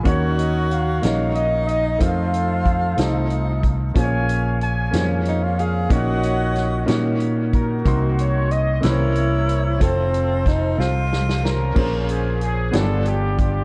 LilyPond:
<<
  \new Staff \with { instrumentName = "Horn section" } { \time 6/8 \key bes \minor \tempo 4. = 62 << { des''8 ees''8 f''4 ees''8 ees''8 | f''2~ f''8 r8 | aes''4 aes''4 r8 f''8 | ges''2 r8 bes'8~ |
bes'8 des''8 ees''8 des''4. | c''2 r8 bes'8~ | bes'8 aes'8 aes'8 a'8 g'8 r8 | } \\ { <ges' bes'>4 <bes' des''>4. r8 | <a' c''>2~ <a' c''>8 r8 | <des'' f''>4 <des'' f''>4. r8 | <des'' ees''>2 r8 <ees' ges'>8~ |
<ees' ges'>4 r8 <e' bes'>4. | <f' a'>2 r8 <des' f'>8~ | <des' f'>4 r8 <d' f'>4. | } >> }
  \new Staff \with { instrumentName = "Tenor saxophone" } { \time 6/8 \key bes \minor ges'4. ees'4. | f'4. ees'4 r8 | r2 ees'16 f'16 aes'8 | ges'2 r4 |
r4. e'4. | c'4 ees'8 f'4 r8 | r2. | }
  \new Staff \with { instrumentName = "Grand piano" } { \time 6/8 \key bes \minor <ees bes des' ees' ges' des''>4. <bes des' ees' ges' des''>4. | <a c' ees' f' bes' c''>4. <a c' ees' f' a'>4. | <bes, bes des' f' aes' c'' des''>4. <bes des' f' aes' c'' des''>4. | <bes, bes des' ees' ges' des''>4. <bes des' ees' ges' des''>4. |
<c bes ees' ges' c'''>4. <c bes c' des' e' g' ces''>4. | <c' f' a'>4. <c' f' c''>4. | <bes, bes des' f' aes' c''>4. <g, b d' f' g' des'' d''>4. | }
  \new Staff \with { instrumentName = "Fingered electric bass" } { \clef bass \time 6/8 \key bes \minor ees,4. bes,,4. | f,4. c,4. | bes,,4. f,4. | bes,,4. bes,4. |
c,4. c,4. | f,,4. c,4. | bes,,4. g,,4. | }
  \new DrumStaff \with { instrumentName = "Drums" } \drummode { \time 6/8 <hh bd>8 hh8 hh8 <hh sn>8 hh8 hh8 | <hh bd>8 hh8 <hh bd>8 <hh sn>8 hh8 <hh bd>8 | <hh bd>8 hh8 hh8 <hh sn>8 hh8 hh8 | <hh bd>8 hh8 <hh sn>8 <hh sn>8 hh8 <hh bd>8 |
<hh bd>8 hh8 hh8 <hh sn>8 hh8 hh8 | <hh bd>8 hh8 <hh bd sn>8 sn8 sn16 sn16 sn8 | <cymc bd>8 hh8 hh8 <hh sn>8 hh8 <hh bd>8 | }
>>